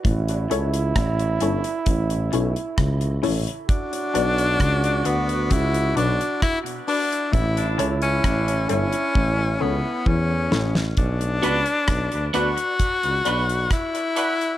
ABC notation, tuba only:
X:1
M:4/4
L:1/16
Q:1/4=66
K:Bm
V:1 name="Tuba" clef=bass
A,,,2 C,,2 A,,,2 G,,, z A,,,2 B,,, z C,,2 A,,, z | z2 B,,,2 C,,2 D,,2 C,,2 B,,, z4 z | A,,,2 C,,2 A,,,2 G,,, z A,,,2 C,, z E,,2 A,,,2 | B,,,2 C,, z B,,, D,, D,, z2 C,, B,,,2 z4 |]